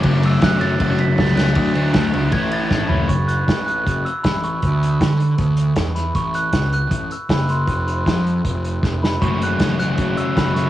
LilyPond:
<<
  \new Staff \with { instrumentName = "Glockenspiel" } { \time 4/4 \key fis \minor \tempo 4 = 157 r8 e'''8 fis'''8 a'''4 b'''8 a'''8 fis'''8~ | fis'''2 gis'''8 a'''4 b''8 | cis'''8 fis'''4 fis'''4 e'''8 b''8 cis'''8~ | cis'''2.~ cis'''8 b''8 |
cis'''8 fis'''4 fis'''4 e'''8 b''8 c'''8~ | c'''2.~ c'''8 b''8 | cis'''8 fis'''4 fis'''4 e'''8 b''8 cis'''8 | }
  \new Staff \with { instrumentName = "Distorted electric guitar" } { \time 4/4 \key fis \minor fis,8 a8 fis8 a8 cis'8 fis'8 a8 cis'8 | d8 a8 d8 a8 a,8 e'4 cis'8 | r1 | r1 |
r1 | r1 | <fis a cis' fis'>4 <fis a cis' fis'>8 <fis a cis' fis'>8 <fis a cis' fis'>4 <fis a cis' fis'>8 <fis a cis' fis'>8 | }
  \new Staff \with { instrumentName = "Overdriven electric guitar" } { \time 4/4 \key fis \minor <fis, cis fis a cis'>8 <fis a cis'>8 <cis fis a cis'>8 <fis a cis'>8 <fis, cis fis a cis'>4 <cis fis a cis'>8 <fis a cis'>8 | <d fis a d'>8 <fis a d'>8 <d fis a d'>8 <fis a d'>8 <a, e a cis' e'>4 <e a cis' e'>8 <a cis' e'>8 | r1 | r1 |
r1 | r1 | <fis, cis fis a cis'>4 <fis, cis fis a cis'>8 <fis, cis fis a cis'>8 <fis, cis fis a cis'>4 <fis, cis fis a cis'>8 <fis, cis fis a cis'>8 | }
  \new Staff \with { instrumentName = "Picked electric bass" } { \clef bass \time 4/4 \key fis \minor fis,,4 fis,4 fis,,4 cis,4 | d,4 d,8 cis,8 a,,4 gis,,8 fis,,8 | fis,,4 a,,4 fis,,8 r8 a,,4 | d,4 d4 d,4 e,4 |
a,,4 cis,4 a,,8 r8 fis,,4 | f,,4 f,4 f,,4 f,,4 | fis,,4 a,,4 fis,,8 r8 fis,,4 | }
  \new DrumStaff \with { instrumentName = "Drums" } \drummode { \time 4/4 <bd cymr>8 cymr8 <bd cymr sn>8 cymr8 <bd cymr>8 cymr8 <bd cymr sn>8 <cymr sn>16 sn16 | <bd cymr>8 cymr8 <bd cymr sn>8 cymr8 <bd cymr>8 cymr8 <bd sn>8 tomfh8 | <hh bd>8 hh8 <hh bd sn>8 hh8 <hh bd>8 hh8 <hh bd sn>8 hh8 | <hh bd>8 hh8 <hh bd sn>8 hh8 <hh bd>8 hh8 <hh bd sn>8 <hh sn>8 |
<hh bd>8 hh8 <hh bd sn>8 hh8 <hh bd>8 hh8 <hh bd sn>8 hh8 | <hh bd>8 hh8 <hh bd sn>8 hh8 <hh bd>8 hh8 <bd sn>8 sn8 | <hh bd>8 hh8 <hh bd sn>8 hh8 <hh bd>8 hh8 <hh bd sn>8 <hh sn>8 | }
>>